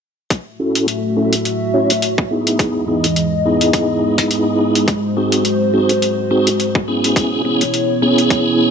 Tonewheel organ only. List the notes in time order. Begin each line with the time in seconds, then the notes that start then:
0.60 C#4 E4 F#4 A4
1.17 C#4 E4 F#4 A4
1.74 C#4 E4 F#4 C#5
2.31 B3 D#4 E4 G#4
2.88 B3 D#4 E4 G#4
3.45 B3 D#4 E4 G#4
5.17 C4 D#4 F#4 G#4
5.74 C4 D#4 F#4 G#4
6.31 C4 D#4 F#4 G#4
6.88 B3 C#4 E4 G#4
7.45 B3 C#4 E4 G#4
8.02 B3 C#4 E4 G#4